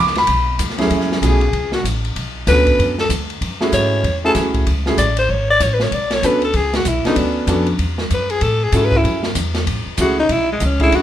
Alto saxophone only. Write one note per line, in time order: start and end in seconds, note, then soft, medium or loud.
1.25 1.71 G#4 medium
1.74 1.85 F#4 medium
2.48 2.95 B4 medium
3.00 3.10 A4 medium
3.74 4.20 C#5 loud
4.25 4.32 A4 medium
4.98 5.16 D5 medium
5.19 5.32 C5 medium
5.31 5.49 C#5 medium
5.50 5.65 D5 loud
5.63 5.75 C#5 medium
5.74 5.84 B4 medium
5.83 5.95 C#5 medium
5.94 6.15 D5 medium
6.14 6.27 C#5 loud
6.26 6.44 B4 medium
6.44 6.58 A4 medium
6.56 6.75 G#4 medium
6.76 6.90 F#4 medium
6.88 7.06 E4 medium
7.07 7.19 D#4 medium
7.18 7.68 D4 medium
8.14 8.32 B4 medium
8.31 8.45 G#4 loud
8.43 8.65 A4 medium
8.64 8.77 G#4 medium
8.75 8.87 A4 medium
8.85 8.99 B4 loud
8.97 9.27 E4 medium
10.01 10.18 F#4 medium
10.19 10.33 D#4 loud
10.32 10.50 E4 medium
10.52 10.67 G#3 medium
10.66 10.82 C#4 medium
10.83 10.97 E4 loud
10.96 11.02 F#4 medium